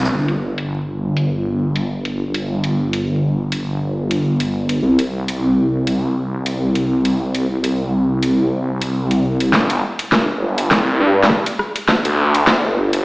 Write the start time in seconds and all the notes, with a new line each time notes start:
0.05 shaker
0.12 G1
0.28 closed hi-hat
0.58 closed hi-hat
1.17 closed hi-hat
1.76 closed hi-hat
2.05 closed hi-hat
2.34 closed hi-hat
2.64 closed hi-hat
2.93 closed hi-hat
3.52 closed hi-hat
4.11 closed hi-hat
4.40 closed hi-hat
4.69 closed hi-hat
4.82 C2
4.99 closed hi-hat
5.28 closed hi-hat
5.87 closed hi-hat
6.46 closed hi-hat
6.75 closed hi-hat
7.05 closed hi-hat
7.35 closed hi-hat
7.64 closed hi-hat
8.23 closed hi-hat
8.82 closed hi-hat
9.11 closed hi-hat
9.40 closed hi-hat
9.53 G1, kick, snare
9.70 closed hi-hat
9.99 closed hi-hat
10.12 G1, kick, snare
10.58 closed hi-hat
10.71 C2, kick, snare
11.00 G2
11.23 snare
11.30 kick
11.46 closed hi-hat
11.59 cross-stick
11.76 closed hi-hat
11.88 kick, snare
12.05 D2, closed hi-hat
12.35 closed hi-hat
12.47 kick, snare
12.64 G1
12.93 G1, closed hi-hat